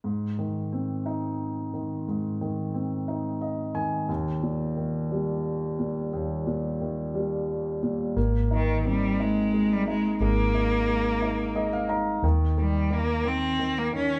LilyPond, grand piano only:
<<
  \new Staff \with { instrumentName = "Grand piano" } { \time 6/8 \key aes \major \tempo 4. = 59 r2. | r2 ees''8 aes''8 | r2. | r2. |
r2. | r2 ees''16 f''16 bes''8 | r2. | }
  \new Staff \with { instrumentName = "Grand piano" } { \clef bass \time 6/8 \key aes \major aes,8 ees8 c'8 ees'4 ees8 | aes,8 ees8 c'8 ees'4 ees8 | ees,8 bes,8 ees8 g4 bes,8 | ees,8 bes,8 ees8 g4 bes,8 |
bes8 ees'8 c'8 ees'8 aes8 ees'8 | aes8 ees'8 aes8 ees'8 aes8 ees'8 | ees8 ees8 ees8 ees8 ees8 ees8 | }
>>